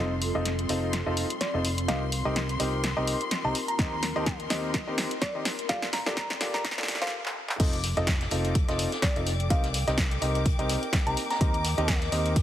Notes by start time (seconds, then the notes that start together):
Already playing: F1 C4 D#4 F4 A4 D#5 C6
0.22 open hi-hat
0.35 F1 C4 D#4 F4 A4 D#5
0.45 snare, closed hi-hat
0.59 closed hi-hat
0.69 F1 C4 D#4 F4 A4 D#5, open hi-hat
0.93 snare, closed hi-hat
1.06 F1 C4 D#4 F4 A4 D#5
1.17 open hi-hat
1.30 closed hi-hat
1.41 D5, snare, closed hi-hat
1.54 F1 C4 D#4 F4 A4 D#5
1.65 open hi-hat
1.78 closed hi-hat
1.88 C2 C4 D#4 G4 A#4 D#5 F5, snare, closed hi-hat
2.12 open hi-hat
2.25 C2 C4 D#4 G4 A#4 D#5
2.36 snare, closed hi-hat
2.49 closed hi-hat
2.57 C2 C4 D#4 G4 A#4 D#5, open hi-hat
2.84 snare, closed hi-hat
2.97 C2 C4 D#4 G4 A#4 D#5
3.07 open hi-hat
3.21 closed hi-hat
3.31 snare, closed hi-hat
3.44 C2 C4 D#4 G4 A#4 D#5 A#5
3.55 open hi-hat
3.68 A#5, closed hi-hat
3.79 D#2 C4 D#4 G4 A#4 D#5, kick, snare, closed hi-hat
4.03 snare, open hi-hat
4.16 D#2 C4 D#4 G4 A#4 D#5
4.26 kick, snare, closed hi-hat
4.40 closed hi-hat
4.50 D#2 C4 D#4 G4 A#4 D#5, snare, open hi-hat
4.74 kick, snare, closed hi-hat
4.87 D#2 C4 D#4 G4 A#4 D#5
4.98 snare, open hi-hat
5.11 closed hi-hat
5.22 D5, kick, snare, closed hi-hat
5.35 D#2 C4 D#4 G4 A#4 D#5
5.45 snare, open hi-hat
5.59 closed hi-hat
5.69 G1 A#3 F4 G4 A4 D5 F5, kick, snare, closed hi-hat
5.82 snare
5.93 A#5, snare, open hi-hat
6.06 G1 A#3 F4 G4 A4 D5, snare
6.17 kick, snare, closed hi-hat
6.30 snare, closed hi-hat
6.41 G1 A#3 F4 G4 A4 D5, snare, open hi-hat
6.54 A#5, snare
6.64 kick, snare, closed hi-hat
6.71 snare
6.78 G1 A#3 F4 G4 A4 D5, snare, closed hi-hat
6.83 snare
6.88 snare, open hi-hat
6.95 snare
7.02 G2 A#3 F4 G4 A4 C5 F5, snare, closed hi-hat
7.07 snare
7.26 clap
7.49 clap
7.60 F1 C4 D#4 F4 A4 D#5 D6, kick, closed hi-hat, crash
7.73 closed hi-hat
7.83 snare, closed hi-hat, open hi-hat
7.97 F1 C4 D#4 F4 A4 D#5, closed hi-hat
8.07 kick, snare, closed hi-hat
8.21 snare, closed hi-hat
8.27 D5, closed hi-hat
8.31 F1 C4 D#4 F4 A4 D#5, open hi-hat
8.44 G5, closed hi-hat
8.55 kick, closed hi-hat
8.68 F1 C4 D#4 F4 A4 D#5, snare, closed hi-hat
8.79 closed hi-hat, open hi-hat
8.92 snare, closed hi-hat
9.02 D5, kick, snare, closed hi-hat
9.16 F1 C4 D#4 F4 A4 D#5, closed hi-hat
9.27 snare, closed hi-hat, open hi-hat
9.40 closed hi-hat
9.50 C4 D#4 G4 A#4 D#5 F5, kick, closed hi-hat
9.64 snare, closed hi-hat
9.74 snare, closed hi-hat, open hi-hat
9.87 C2 C4 D#4 G4 A#4 D#5, snare, closed hi-hat
9.98 kick, snare, closed hi-hat
10.11 closed hi-hat
10.16 D#5
10.21 C2 C4 D#4 G4 A#4 D#5, closed hi-hat, open hi-hat
10.35 closed hi-hat
10.46 kick, closed hi-hat
10.59 C2 C4 D#4 G4 A#4 D#5, closed hi-hat
10.69 snare, closed hi-hat, open hi-hat
10.83 closed hi-hat
10.93 kick, snare, closed hi-hat
11.06 C2 C4 D#4 G4 A#4 D#5 A#5, closed hi-hat
11.17 closed hi-hat, open hi-hat
11.30 A#5, snare, closed hi-hat
11.41 D#2 C4 D#4 G4 A#4 D#5, kick, closed hi-hat
11.54 closed hi-hat
11.65 snare, closed hi-hat, open hi-hat
11.78 D#2 C4 D#4 G4 A#4 D#5, closed hi-hat
11.88 kick, snare, closed hi-hat
12.01 snare, closed hi-hat
12.12 D#2 C4 D#4 G4 A#4 D#5, closed hi-hat, open hi-hat
12.25 closed hi-hat
12.36 kick, closed hi-hat